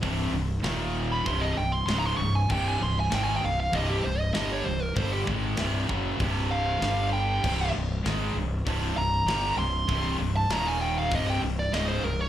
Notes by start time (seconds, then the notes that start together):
0.03 C1 C2 G2 C3, kick, open hi-hat
0.32 C1 C2 G2
0.63 D#1 D#2 A#2 D#3, snare, open hi-hat
1.12 B5
1.26 C1 C2 G2 C3 C6, kick, open hi-hat
1.41 D#5
1.57 C1 C2 G2 G5
1.72 C6
1.86 C#1 C#2 G#2 C#3 C6, snare, open hi-hat
1.99 A#5
2.06 C6
2.17 C1 C2 G2 C#6
2.35 G#5
2.49 C1 C2 G2 C3 G5, kick, crash
2.68 G#5
2.80 C1 C2 G2 C6
3.00 G#5
3.11 G#1 G#2 D#3 G#3, snare, open hi-hat
3.15 G5
3.24 G#5
3.36 G5
3.41 C1 C2 G2
3.45 F5
3.60 F5
3.73 C1 C2 G2 C3 D#5, kick, open hi-hat
3.90 G4
4.04 C1 C2 G2 C5
4.19 D#5
4.33 G1 G2 D3 G3 D#5, snare, open hi-hat
4.53 C#5
4.64 C1 C2 G2 C5
4.83 A#4
4.94 G1 G2 D3 G3 C5, kick, open hi-hat
5.12 G4
5.26 G#1 G#2 D#3 G#3, kick
5.57 C1 C2 G2 C3, snare, open hi-hat
5.87 F#1 F#2 C#3 F#3, kick
6.19 C1 C2 G2 C3, kick, open hi-hat
6.51 F5
6.80 G1 G2 D3 G3, snare, open hi-hat
7.13 G5
7.43 C1 C2 G2 C3, kick, crash
7.74 C1 C2 G2
8.03 G#1 G#2 D#3 G#3, snare, open hi-hat
8.35 C1 C2 G2
8.66 C1 C2 G2 C3, kick, open hi-hat
8.96 C1 C2 G2 A#5
9.26 G1 G2 D3 G3, snare, open hi-hat
9.57 C1 C2 G2 C6
9.88 C1 C2 G2 C3, kick, open hi-hat
10.20 C1 C2 G2
10.36 A5
10.50 D#1 D#2 A#2 D#3 A#5, snare, open hi-hat
10.66 G#5
10.81 G5
10.99 F5
11.11 C1 C2 G2 C3 D#5, kick, open hi-hat
11.30 G5
11.42 C1 C2 G2
11.59 D5
11.73 C#1 C#2 G#2 C#3 D#5, snare, open hi-hat
11.88 C5
12.03 C1 C2 G2 A#4
12.20 C#5